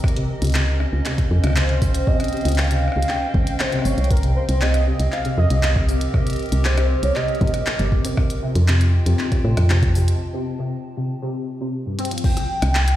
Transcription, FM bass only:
0.42 0.86 C#2 loud
0.93 1.01 C#2 medium
1.31 1.39 F2 medium
1.44 2.00 C#2 loud
2.45 2.89 C#2 loud
2.96 3.05 C#2 medium
3.34 3.43 G#1 loud
3.85 3.94 G#1 medium
3.98 4.42 C2 medium
4.49 4.93 C2 loud
5.00 5.08 C2 medium
5.38 5.46 F2 loud
5.50 6.07 C2 loud
6.52 6.96 C2 medium
7.03 7.11 C2 medium
7.41 7.50 A#1 loud
7.79 8.11 G1 loud
8.55 9.00 F2 loud
9.06 9.15 F2 medium
9.44 9.53 A2 medium
9.57 10.14 F2 medium
12.62 12.96 C2 loud

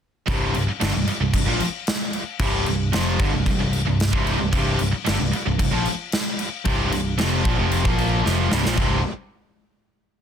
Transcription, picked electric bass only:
0.28 0.53 C1 loud
0.54 0.67 C1 medium
0.68 muted picked electric bass stroke soft
0.82 0.94 G1 medium
0.94 1.07 C1 medium
1.20 1.33 C1 medium
1.34 1.46 C1 medium
1.46 1.59 A#1 loud
1.60 muted picked electric bass stroke soft
2.40 2.64 C1 loud
2.67 2.91 C1 medium
2.93 3.18 F1 medium
3.20 3.32 G1 medium
3.34 3.46 C1 medium
3.46 3.59 C1 medium
3.61 3.85 C1 medium
3.87 4.11 C1 medium
4.13 4.38 C1 loud
4.41 4.52 C1 medium
4.53 4.78 C1 medium
4.81 4.93 C1 medium
4.95 muted picked electric bass stroke soft
5.07 5.19 G1 medium
5.20 5.32 C1 medium
5.34 muted picked electric bass stroke soft
5.47 5.59 C1 medium
5.60 5.72 C1 medium
5.74 5.85 A#1 loud
5.88 muted picked electric bass stroke soft
6.66 6.90 C1 medium
6.94 7.17 C1 medium
7.21 7.44 F1 medium
7.45 7.57 A#1 loud
7.59 7.83 F1 loud
7.85 8.22 A#1 loud
8.26 8.50 F1 medium
8.51 8.63 C1 loud
8.65 8.77 A#1 medium
8.78 9.02 C1 medium

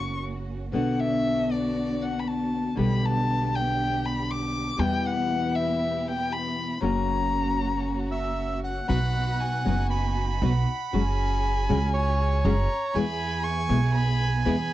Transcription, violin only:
0.00 0.18 C#6 medium
0.74 1.01 F#5 medium
1.00 1.54 E5 medium
1.52 2.03 D5 medium
2.02 2.21 F#5 medium
2.19 2.29 B5 medium
2.28 2.78 A5 medium
2.80 3.07 B5 medium
3.05 3.57 A5 loud
3.55 4.07 G5 medium
4.05 4.32 B5 medium
4.31 4.82 D6 medium
4.80 5.08 G5 loud
5.06 5.57 F#5 loud
5.56 6.09 E5 medium
6.08 6.34 G5 medium
6.33 6.83 B5 medium
6.84 8.33 A#5 medium
8.89 9.41 B5 loud
9.40 10.44 G#5 medium
10.42 10.94 F#5 medium
10.93 12.46 G#5 loud
12.44 12.95 A#5 loud
12.94 13.45 B5 loud
13.44 13.94 C#6 loud
13.94 14.42 B5 loud
14.45 14.73 B5 medium

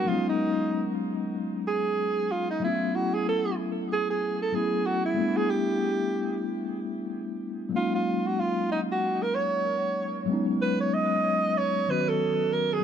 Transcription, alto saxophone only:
0.08 0.28 F4 medium
0.29 0.89 D#4 medium
1.68 2.33 G#4 medium
2.32 2.50 F4 medium
2.51 2.62 D#4 medium
2.64 2.97 E4 medium
2.95 3.16 F#4 medium
3.15 3.27 G#4 medium
3.29 3.58 A4 medium
3.93 4.10 G#4 loud
4.10 4.40 G#4 medium
4.42 4.56 A4 loud
4.54 4.88 G#4 medium
4.86 5.05 F#4 loud
5.05 5.38 E4 medium
5.37 5.52 G#4 loud
5.51 6.46 G4 medium
7.76 7.93 F4 medium
7.95 8.28 F4 medium
8.27 8.41 F#4 medium
8.40 8.71 F4 medium
8.72 8.80 D#4 medium
8.92 9.24 F#4 medium
9.23 9.36 A#4 medium
9.35 10.30 C#5 loud
10.62 10.79 B4 loud
10.81 10.95 C#5 medium
10.94 11.60 D#5 loud
11.58 11.92 C#5 loud
11.90 12.10 B4 medium
12.09 12.55 A4 loud
12.53 12.75 A#4 medium
12.73 12.84 G#4 medium

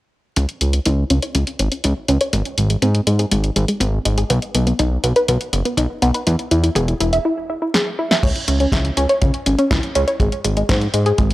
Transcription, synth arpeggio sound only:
0.37 0.47 C#4 medium
0.61 0.72 C#4 medium
0.74 0.80 C#4 medium
0.86 0.97 E4 medium
1.10 1.22 C#4 loud
1.23 1.33 C#5 medium
1.35 1.45 C#4 medium
1.59 1.70 C#4 medium
1.72 1.78 C#4 medium
1.84 1.96 E4 medium
2.09 2.20 C#4 medium
2.21 2.31 C#5 medium
2.33 2.44 G#3 medium
2.58 2.68 G#3 medium
2.70 2.76 G#3 medium
2.82 2.94 C4 medium
3.07 3.19 G#3 loud
3.19 3.30 G#4 medium
3.31 3.42 G#3 medium
3.56 3.67 G#3 medium
3.68 3.75 G#3 medium
3.81 3.92 C4 medium
4.05 4.17 G#3 medium
4.18 4.28 G#4 medium
4.30 4.41 B3 medium
4.55 4.65 B3 medium
4.67 4.73 B3 medium
4.79 4.91 D#4 medium
5.04 5.15 B3 medium
5.16 5.27 B4 loud
5.28 5.39 B3 medium
5.53 5.63 B3 medium
5.65 5.72 B3 medium
5.78 5.89 D#4 medium
6.02 6.14 B3 loud
6.14 6.25 B4 medium
6.27 6.37 E4 medium
6.51 6.62 E4 medium
6.64 6.70 E4 medium
6.76 6.88 G#4 medium
7.00 7.12 E4 medium
7.13 7.23 E5 medium
7.25 7.36 E4 medium
7.50 7.60 E4 medium
7.62 7.68 E4 medium
7.74 7.86 G#4 medium
7.99 8.10 E4 loud
8.11 8.22 E5 medium
8.23 8.34 C#4 medium
8.48 8.59 C#4 medium
8.60 8.67 C#4 medium
8.72 8.84 E4 medium
8.97 9.09 C#4 loud
9.09 9.20 C#5 loud
9.22 9.32 C#4 medium
9.46 9.57 C#4 medium
9.59 9.65 C#4 medium
9.71 9.83 E4 medium
9.95 10.07 C#4 loud
10.08 10.18 C#5 medium
10.20 10.31 G#3 medium
10.45 10.55 G#3 medium
10.57 10.63 G#3 medium
10.69 10.81 C4 medium
10.94 11.06 G#3 medium
11.06 11.17 G#4 medium
11.18 11.29 G#3 medium

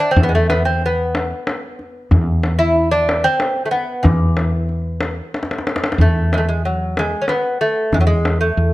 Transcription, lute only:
0.11 0.22 C4 medium
0.23 0.31 B3 medium
0.29 0.33 G#3 medium
0.35 0.49 A3 medium
0.50 0.64 B3 medium
0.65 0.84 C4 medium
0.86 2.26 B3 medium
2.59 2.91 E4 loud
2.91 3.25 D4 medium
3.24 3.65 C4 loud
3.66 3.71 A3 medium
3.71 4.05 B3 medium
4.03 5.66 E3 medium
6.01 6.33 A3 medium
6.34 6.40 G#3 medium
6.34 6.45 A3 medium
6.49 6.65 G#3 medium
6.65 6.98 F#3 medium
6.99 7.23 G#3 medium
7.22 7.28 C#4 medium
7.29 7.61 B3 medium
7.61 7.94 A3 medium
7.94 8.00 G#3 medium
8.01 8.06 F#3 medium
8.07 8.40 G#3 medium
8.41 8.73 A3 medium

